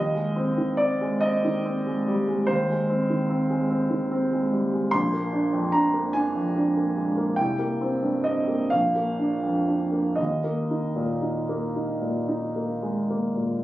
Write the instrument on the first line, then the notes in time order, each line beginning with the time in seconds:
grand piano
Already playing: D#2 D#5
0.15 G#3
0.36 C4
0.58 D#3
0.77 C4 D5
1.01 G#3
1.21 C4 D#5
1.44 D#3
1.66 C4
1.86 G#3
2.08 G3
2.28 G#3
2.47 D#2 C5
2.70 G#3
2.90 C4
3.10 D#3
3.30 C4
3.50 G#3
3.70 C4
3.90 D#3
4.11 C4
4.32 G#3
4.53 G3
4.73 G#3
4.91 A#1 C6
5.13 A#3
5.33 D4
5.53 F2
5.72 D4 A#5
5.94 A#3
6.13 D4 G#5
6.35 F2
6.56 D4
6.77 A#3
6.96 G#3
7.17 A#3
7.36 C2 G5
7.59 A#3
7.81 C4
8.02 G2
8.24 C4 D#5
8.48 A#3
8.70 A#1 F5
8.95 A#3
9.19 D4
9.43 F2
9.68 D4
9.92 A#3
10.16 D#2 D#5
10.44 A#3
10.71 D#4
10.96 A#2
11.22 D#4
11.49 A#3
11.76 D#4
12.02 A#2
12.29 D#4
12.56 A#3
12.83 G#3
13.10 A#3
13.36 A#2